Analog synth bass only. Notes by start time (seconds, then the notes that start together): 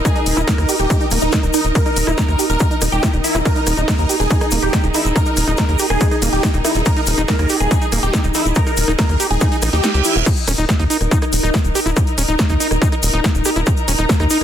0.26 D#1
0.37 D#1
0.58 D#2
0.79 D#1
1.11 D#1
1.22 D#1
1.43 D#1
1.65 D#1
1.96 D#1
2.07 D#1
2.28 D#2
2.50 D#1
2.82 D#1
2.92 D#1
3.13 D#1
3.35 D#1
3.67 D#1
3.77 D#1
3.99 D#2
4.20 D#1
4.52 D#1
4.62 D#1
4.84 D#1
5.05 D#1
5.37 D#1
5.48 D#1
5.69 D#2
5.90 D#1
6.22 D#1
6.33 D#1
6.54 D#1
6.75 D#1
7.07 D#1
7.18 D#1
7.39 D#2
7.60 D#1
7.92 D#1
8.03 D#1
8.24 D#1
8.45 D#1
8.77 D#1
8.88 D#1
9.09 D#2
9.31 D#1
9.62 A#1
9.73 D#2
9.94 C#2
10.16 D#1
10.48 D#1
10.58 D#1
10.79 D#2
11.01 D#1
11.33 D#1
11.43 D#1
11.65 D#1
11.86 D#1
12.18 D#1
12.28 D#1
12.50 D#2
12.71 D#1
13.03 D#1
13.14 D#1
13.35 D#1
13.56 D#1
13.88 D#1
13.99 D#1
14.20 D#2